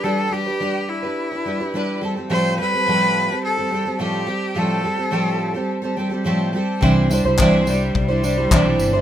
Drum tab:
TB |--------|--------|--------|-x-x-x-x|
CP |--------|--------|--------|--x---x-|
BD |--------|--------|--------|o-o-o-o-|